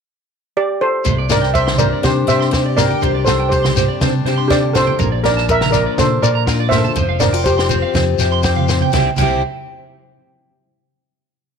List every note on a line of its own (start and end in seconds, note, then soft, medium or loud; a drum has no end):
0.57 0.80 G4 medium
0.57 0.82 D5 medium
0.81 1.27 A4 medium
0.81 1.27 C5 medium
1.05 1.92 C2 medium
1.05 2.29 C3 medium
1.05 1.13 C5 medium
1.05 kick medium
1.05 low conga medium
1.05 shekere medium
1.18 1.26 D5 medium
1.30 2.03 D4 medium
1.30 1.54 A#4 medium
1.30 1.38 D5 medium
1.30 1.57 D5 medium
1.30 snare medium
1.30 low conga medium
1.30 shekere medium
1.42 1.49 G5 medium
1.42 snare soft
1.54 2.26 G4 medium
1.54 1.62 C5 medium
1.54 1.66 C5 medium
1.54 1.65 E5 loud
1.54 kick medium
1.54 shekere medium
1.67 1.75 C6 medium
1.67 snare medium
1.67 high conga medium
1.78 3.00 G3 medium
1.78 1.90 A#4 medium
1.78 1.87 C5 medium
1.78 1.90 D5 medium
1.78 low conga medium
1.78 shekere loud
1.93 2.00 D5 medium
2.03 2.26 C3 medium
2.03 3.06 D4 medium
2.03 2.27 G4 medium
2.03 2.27 C5 medium
2.03 2.12 C5 medium
2.03 kick medium
2.03 snare medium
2.03 high conga medium
2.03 shekere medium
2.27 3.02 G2 medium
2.27 2.93 C3 medium
2.27 2.50 G4 medium
2.27 2.37 C5 medium
2.27 2.75 C5 medium
2.27 2.79 E5 medium
2.27 snare soft
2.27 shekere loud
2.40 2.48 C6 medium
2.40 snare soft
2.51 2.77 G4 medium
2.51 2.61 C5 medium
2.51 kick medium
2.51 snare medium
2.51 shekere medium
2.66 2.73 D5 medium
2.77 3.52 G4 medium
2.77 3.24 A#4 medium
2.77 2.85 C5 medium
2.77 3.23 D5 medium
2.77 snare medium
2.77 low conga medium
2.77 shekere medium
2.90 2.98 G5 medium
2.90 high conga medium
2.90 shekere soft
3.02 3.88 C2 medium
3.02 4.26 C3 medium
3.02 3.10 C5 medium
3.02 kick medium
3.02 low conga medium
3.02 shekere medium
3.15 3.22 D5 medium
3.25 3.50 A4 medium
3.25 3.48 C5 medium
3.25 3.35 C5 medium
3.25 snare medium
3.25 low conga medium
3.25 shekere loud
3.29 4.01 D4 medium
3.40 3.47 G5 medium
3.49 4.21 G4 medium
3.49 4.26 G4 medium
3.49 4.21 C5 medium
3.49 3.59 C5 medium
3.49 kick medium
3.49 shekere medium
3.64 3.72 C6 medium
3.64 snare medium
3.64 high conga medium
3.76 4.97 G3 medium
3.76 3.84 C5 medium
3.76 snare soft
3.76 low conga medium
3.76 shekere loud
3.88 3.96 D5 medium
4.01 4.23 C3 medium
4.01 4.97 D4 medium
4.01 4.10 C5 medium
4.01 kick medium
4.01 snare medium
4.01 high conga medium
4.01 shekere medium
4.25 4.98 G2 medium
4.25 4.90 C3 medium
4.25 5.01 G4 medium
4.25 4.34 C5 medium
4.25 snare soft
4.38 4.45 C6 medium
4.48 4.74 D3 medium
4.48 4.72 G4 medium
4.48 4.58 C5 medium
4.48 4.76 D5 loud
4.48 kick medium
4.48 snare medium
4.48 shekere medium
4.63 muted clean electric guitar stroke medium
4.73 5.00 C3 medium
4.73 5.20 A4 medium
4.73 4.82 C5 medium
4.73 5.26 C5 medium
4.73 snare medium
4.73 low conga medium
4.73 shekere medium
4.87 4.95 G5 medium
4.87 high conga medium
4.99 5.85 A#1 medium
4.99 6.22 A#2 medium
4.99 5.07 A#4 medium
4.99 kick medium
4.99 low conga medium
4.99 shekere medium
5.12 5.19 D5 medium
5.24 5.98 D4 medium
5.24 5.47 A#4 medium
5.24 5.32 A#4 medium
5.24 5.50 D5 medium
5.24 snare medium
5.24 low conga medium
5.37 5.44 A5 medium
5.37 snare soft
5.49 5.56 A#4 medium
5.49 5.70 A#4 medium
5.49 5.76 E5 loud
5.49 muted steel-string acoustic guitar stroke medium
5.49 kick medium
5.49 shekere medium
5.61 5.69 A#5 medium
5.61 snare medium
5.61 high conga medium
5.71 6.94 F3 medium
5.71 5.95 A#4 medium
5.71 5.82 A#4 medium
5.71 5.96 D5 medium
5.71 snare soft
5.71 low conga medium
5.71 shekere medium
5.86 5.94 D5 medium
5.98 6.20 A#2 medium
5.98 6.94 D4 medium
5.98 6.22 A4 medium
5.98 6.24 C5 medium
5.98 muted clean electric guitar stroke medium
5.98 kick medium
5.98 snare medium
5.98 high conga medium
5.98 shekere medium
6.22 6.87 A#2 medium
6.22 6.94 A#2 medium
6.22 6.30 A#4 medium
6.22 6.69 A#4 medium
6.22 6.69 D5 medium
6.22 shekere medium
6.35 6.42 A#5 medium
6.47 6.94 F4 medium
6.47 6.55 A#4 medium
6.47 kick medium
6.47 snare medium
6.47 shekere medium
6.60 6.67 D5 medium
6.69 6.80 A#4 medium
6.69 7.16 C5 medium
6.69 7.16 E5 medium
6.69 snare medium
6.69 low conga medium
6.69 shekere medium
6.74 6.95 A4 medium
6.84 6.92 A5 medium
6.84 high conga medium
6.84 shekere soft
6.96 7.82 F1 medium
6.96 8.93 F3 medium
6.96 7.04 C5 medium
6.96 kick medium
6.96 low conga medium
6.96 shekere medium
7.09 7.16 F5 medium
7.20 7.34 D4 medium
7.20 7.44 A#4 medium
7.20 7.28 C5 medium
7.20 7.43 D5 medium
7.20 snare medium
7.20 low conga medium
7.20 shekere loud
7.33 7.94 F4 medium
7.33 7.40 G5 medium
7.33 shekere soft
7.44 8.18 G4 medium
7.44 8.16 G4 medium
7.44 8.15 C5 medium
7.44 7.53 C5 medium
7.44 kick medium
7.44 shekere medium
7.58 7.65 C6 medium
7.58 snare medium
7.69 8.90 C4 medium
7.69 7.77 C5 medium
7.69 low conga medium
7.69 shekere loud
7.82 7.90 F5 medium
7.94 8.16 F2 loud
7.94 8.90 F4 medium
7.94 8.02 C5 medium
7.94 kick medium
7.94 snare medium
7.94 high conga medium
7.94 shekere medium
8.18 8.83 F2 medium
8.18 8.92 C3 medium
8.18 8.42 G4 medium
8.18 8.27 C5 medium
8.18 snare soft
8.18 shekere loud
8.31 8.39 C6 medium
8.31 shekere soft
8.43 8.68 G4 medium
8.43 8.51 C5 medium
8.43 kick medium
8.43 snare medium
8.43 shekere medium
8.56 8.64 F5 medium
8.56 high conga medium
8.68 8.95 G4 medium
8.68 8.77 C5 medium
8.68 snare medium
8.68 shekere medium
8.81 8.89 G5 medium
8.81 high conga medium
8.81 shekere soft
8.92 9.07 C2 medium
8.92 9.08 G3 medium
8.92 9.09 C4 medium
8.92 9.10 E4 medium
8.92 9.08 C5 medium
8.92 9.07 E5 medium
8.92 9.07 G5 medium
8.92 muted steel-string acoustic guitar stroke medium
8.92 kick medium
8.92 snare medium
8.92 high conga medium
8.92 shekere medium
8.97 9.10 G4 medium
9.16 9.41 C2 medium
9.16 9.41 G3 medium
9.16 9.41 C4 medium
9.16 9.41 C5 medium
9.16 9.41 E5 medium
9.16 9.41 G5 medium
9.16 muted steel-string acoustic guitar stroke medium
9.16 kick medium
9.16 crash medium
9.16 high conga medium
9.16 shekere medium
9.21 9.42 E4 medium
9.21 9.42 G4 medium